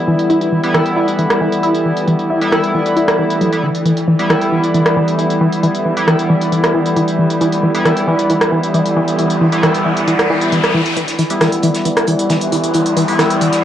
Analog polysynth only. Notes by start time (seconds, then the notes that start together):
Already playing: G3 B3 E4
0.64 G3 B3 E4
2.41 G3 B3 E4
3.53 G3 B3 E4
4.19 G3 B3 E4
5.97 G3 B3 E4
7.75 G3 B3 E4
9.52 G3 B3 E4
10.63 G3 B3 E4
11.30 G3 B3 E4
13.08 G3 B3 E4